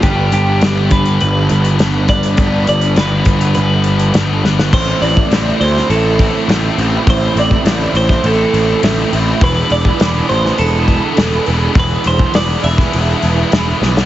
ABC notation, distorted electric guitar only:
X:1
M:4/4
L:1/8
Q:1/4=102
K:Am
V:1 name="Distorted electric guitar" clef=bass
[G,B,DB]6- [G,B,DB] [G,B,DB] | [G,B,DB]6- [G,B,DB] [G,B,DB] | [A,,E,A,CE]2 [A,,E,A,CE] [A,,E,A,CE] [A,,E,A,CE]2 [A,,E,A,CE] [A,,E,A,CE] | [A,,E,A,CE]2 [A,,E,A,CE] [A,,E,A,CE] [A,,E,A,CE]2 [A,,E,A,CE] [A,,E,A,CE] |
[E,,B,,E,^G,B,E]2 [E,,B,,E,G,B,E] [E,,B,,E,G,B,E] [E,,B,,E,G,B,E]2 [E,,B,,E,G,B,E] [E,,B,,E,G,B,E] | [E,,B,,E,^G,B,E]2 [E,,B,,E,G,B,E] [E,,B,,E,G,B,E] [E,,B,,E,G,B,E]2 [E,,B,,E,G,B,E] [E,,B,,E,G,B,E] |]